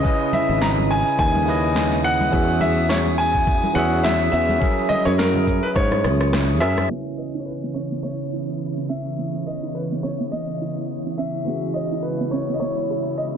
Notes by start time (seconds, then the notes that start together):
Already playing: C#3 C#4 E4 B4 D#5 D#6
0.02 C#3 C#4 E4 B4, kick, shaker
0.07 D#5
0.21 shaker
0.33 E5, high conga, low conga, shaker
0.49 G#1, shaker
0.61 A#5, snare, shaker
0.78 high conga, shaker
0.91 G#5, shaker
1.07 shaker
1.19 D#2 G#5, kick, shaker
1.35 high conga, shaker
1.45 C#3 C#4 E4 B4, shaker
1.50 D#5
1.64 shaker
1.75 snare, high conga, shaker
1.92 snare, shaker
2.04 F#5, shaker
2.21 high conga, shaker
2.30 E2 E3 C#4 F#4 G#4, kick, shaker
2.35 E5
2.49 shaker
2.61 E5, high conga, low conga, shaker
2.78 shaker
2.89 C#5, snare, shaker
3.06 high conga, shaker
3.18 G#5, shaker
3.35 kick, shaker
3.47 kick, shaker
3.64 high conga, shaker
3.74 E2 E3 C#4 F#4 G#4 F#5, shaker
3.79 E5
3.92 shaker
4.04 E5, snare, high conga, shaker
4.21 shaker
4.32 E2 E5, shaker
4.49 high conga, shaker
4.59 F#3 C#4 G#4 A#4, kick, shaker
4.64 E5
4.78 shaker
4.89 D#5, high conga, low conga, shaker
5.05 F#2 C#5, shaker
5.18 A#4, snare, shaker
5.34 high conga, low conga, shaker
5.47 kick, shaker
5.63 B4, shaker
5.76 G#2 C#5, kick, cross-stick, shaker
5.91 cross-stick, high conga, shaker
6.04 C#2, cross-stick, shaker
6.21 cross-stick, shaker
6.33 cross-stick, snare, high conga, shaker
6.50 shaker
6.60 F#2 F#3 C#4 G#4 A#4 E5, cross-stick, shaker
6.77 cross-stick, high conga, shaker
6.89 C#3 E3 B3 C#4 E4 C#5 D#6
7.17 B4 D#5
7.35 D#4
7.40 C#5
7.46 B4
7.64 B3
7.74 C#4 C#5
7.92 B3
8.03 B3 C#5
8.33 E4
8.78 C#4
8.89 C#4 E5
9.19 B3
9.47 B4 D#5
9.63 D#4
9.75 B4
9.92 B3
10.03 C#4 C#5
10.21 B3
10.32 B3 D#5
10.62 E4
11.07 C#4
11.18 C#4 E5
11.45 C#3 E3 G#3 B3 C#4 E4 F#4 G#4
11.50 E5
11.74 C#5 D#5
11.92 E4
12.02 B4
12.21 B3
12.31 C#4 C#5
12.50 B3
12.54 D#5
12.60 B3 C#5
12.90 G#4
13.18 D#5